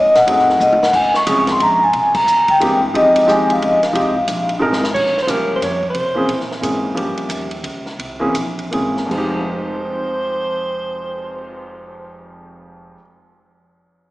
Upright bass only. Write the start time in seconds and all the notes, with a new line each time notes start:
Already playing: G#2
0.14 muted upright bass stroke
0.27 F#2
0.60 D#2
0.93 C#2
1.27 C2
1.59 A#1
1.93 C2
2.26 E2
2.61 G2
2.94 F2
3.28 D#2
3.62 C#2
3.94 C2
4.28 A#1
4.61 G#1
4.95 A#1
5.28 C#2
5.62 F2
5.95 C3
6.29 A#2
6.62 G#2
6.96 G2
7.16 muted upright bass stroke
7.29 D#2
7.63 C#2
7.99 C2
8.34 A#1
8.73 G#1
9.11 F1